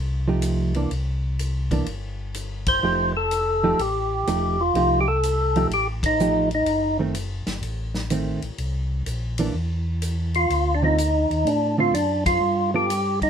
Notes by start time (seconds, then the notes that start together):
Already playing: C2
0.28 F3 A3 D#4 G4
0.42 hi-hat pedal, ride
0.74 E3 A#3 D4, ride
0.90 C2, ride
1.39 hi-hat pedal, ride
1.71 E3 A#3 D4, kick, ride
1.86 G1, ride
2.34 hi-hat pedal, ride
2.66 C5, kick, ride
2.82 F1 F3 A3 D#4 G4
3.17 A4
3.31 hi-hat pedal, ride
3.64 F3 A3 D#4 G4
3.79 A1 G4, ride
4.26 E1 F3 A3 D#4 G4, hi-hat pedal, ride
4.61 F4
4.74 C2 F3 A3 D#4 G4, ride
5.01 G4
5.08 A4
5.23 hi-hat pedal, ride
5.56 F3 A3 D#4 G4, ride
5.69 A1, ride
5.74 G4
6.03 D#4, kick, ride
6.19 F3 A3 D#4 G4, hi-hat pedal
6.51 D#4, ride
6.66 F#1, ride
6.99 D#3 A3 C4
7.14 hi-hat pedal, ride
7.46 G1, snare, ride
7.62 A1, ride
7.94 snare
8.10 D#3 A3 C4, hi-hat pedal, ride
8.42 A1, ride
8.58 C2, ride
9.06 A#1, hi-hat pedal, ride
9.38 E3 A#3 D4, ride
9.53 E2
10.02 hi-hat pedal, ride
10.34 F4, ride
10.50 D2, ride
10.75 D4
10.82 D3 A3 C4 D#4 F4
10.98 hi-hat pedal, ride
11.30 D#2, ride
11.45 A2 D4, ride
11.78 D3 A3 C4 F4
11.93 F#2 D4, hi-hat pedal, ride
12.26 F4, kick, ride
12.41 G2
12.74 G3 B3 F4 G4 A4
12.90 hi-hat pedal, ride
13.22 D#4, kick, ride